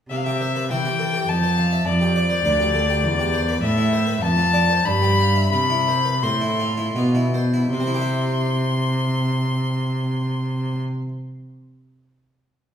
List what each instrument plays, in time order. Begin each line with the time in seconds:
0.10 cello C3, harpsichord C3, violin E5
0.16 violin F5
0.24 harpsichord G4, violin E5
0.41 harpsichord C5
0.56 harpsichord B4
0.70 cello E3, harpsichord E3 C5, violin G5
0.85 harpsichord G4
0.99 harpsichord A4
1.14 harpsichord G4
1.28 cello F2, harpsichord F2, violin A5
1.43 harpsichord C5
1.58 harpsichord F5
1.73 harpsichord E5
1.87 harpsichord F2, cello F2, violin D5
2.01 harpsichord G4
2.16 harpsichord D5
2.30 harpsichord C5
2.45 harpsichord D2 D5, cello D2
2.60 harpsichord G4
2.75 harpsichord A4
2.89 harpsichord G4
3.04 harpsichord E2, cello E2
3.19 harpsichord G4
3.33 harpsichord C5
3.49 harpsichord B4
3.63 harpsichord A2, cello A2, violin E5
3.78 harpsichord E4
3.93 harpsichord C5
4.07 harpsichord B4
4.22 harpsichord F2, cello F2, violin A5
4.37 harpsichord F4
4.53 harpsichord D5
4.70 harpsichord C5
4.85 harpsichord G2, cello G2, violin B5
5.02 harpsichord G4
5.19 harpsichord F5
5.36 harpsichord E5
5.52 harpsichord C3, cello C3, violin B5
5.70 harpsichord E4
5.88 harpsichord C5
6.05 harpsichord B4
6.23 harpsichord A2 C5, cello A2, violin C6
6.41 harpsichord E4
6.59 harpsichord F4
6.77 harpsichord E4
6.96 harpsichord B2 F4, cello B2
7.15 harpsichord E4
7.34 harpsichord C5
7.54 harpsichord E4
7.72 cello C3, harpsichord C3, violin C6
7.80 harpsichord C4
7.87 harpsichord E4
7.94 harpsichord G4
8.01 harpsichord E5